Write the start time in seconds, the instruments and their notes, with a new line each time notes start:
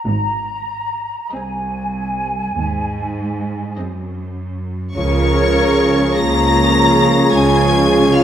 0.05 double bass section G#1, cello section G#2, flute section A#5
1.32 cello section C2, viola section C4, violin section G#4 D#5, flute section G#5
2.57 double bass section D#2, cello section G#2
3.77 cello section F#2, viola section C4, violin section G#4 D#5
4.95 double bass section C#2, tuba C#2, french horn section C#3, cello section C#3, trombone section F3 C#4, bassoon F3, clarinet G#4, viola section A#4, trumpet C#5, violin section C#5 C#6, flute section C#5
6.17 tuba C#2, double bass section C#2, cello section C#3, french horn section A#3, viola section G#4, violin section A#5 A#6, flute section A#5
7.32 double bass section C#2, tuba C#2, cello section C#3, french horn section G#3, viola section F4, violin section G#5 G#6, flute section G#5
8.14 french horn section F3, flute section F5, violin section F5 F6